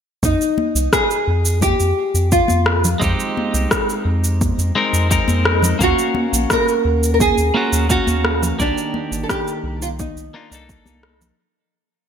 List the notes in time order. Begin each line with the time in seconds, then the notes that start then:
0.23 F2 D#4, kick, cabasa
0.41 cabasa
0.58 high conga
0.75 C2, cabasa
0.93 G#4, kick, cross-stick, cabasa
1.11 cabasa
1.28 F2
1.45 cabasa
1.61 G4, kick, high conga, cabasa
1.80 F2, cabasa
2.14 F2, cabasa
2.32 F4, kick, cabasa
2.48 F2, high conga, cabasa
2.66 cross-stick
2.84 low conga, cabasa
3.00 F2 G#3 C4 D#4, kick, cabasa
3.04 G4
3.20 cabasa
3.37 high conga
3.54 C2, cabasa
3.71 kick, cross-stick, cabasa
3.89 cabasa
4.05 F2
4.24 cabasa
4.41 kick, high conga, cabasa
4.58 F2, cabasa
4.75 G#3 C4 D#4 A#4
4.93 F2, cabasa
5.10 G#3 C4 D#4 A#4, kick, cabasa
5.28 F2, high conga, cabasa
5.45 cross-stick
5.62 low conga, cabasa
5.79 D#2 A#3 C#4 F5, kick, cabasa
5.83 F#4
5.99 cabasa
6.15 high conga
6.33 A#1, cabasa
6.50 A#4, kick, cross-stick, cabasa
6.68 cabasa
6.85 D#2
7.03 cabasa
7.14 A#4
7.20 G#4, kick, high conga, cabasa
7.38 D#2, cabasa
7.54 A#3 C#4 F4 F#4
7.72 D#2, cabasa
7.89 A#3 C#4 F#4 F5, kick, cabasa
8.07 D#2, high conga, cabasa
8.25 cross-stick
8.42 low conga, cabasa
8.59 C2 D#3 A#3 D4 D5, kick, cabasa
8.63 G4
8.78 cabasa
8.94 high conga
9.11 G1, cabasa
9.23 A4
9.30 G4, kick, cross-stick, cabasa
9.48 cabasa
9.64 C2
9.82 F4, cabasa
9.99 D#4, kick, high conga, cabasa
10.16 C2, cabasa
10.34 A#3 D4 D#4 F4
10.50 C2 A#3 D4 D#4, cabasa
10.55 A4
10.69 kick, cabasa
10.86 C2, high conga, cabasa
11.03 cross-stick
11.21 low conga, cabasa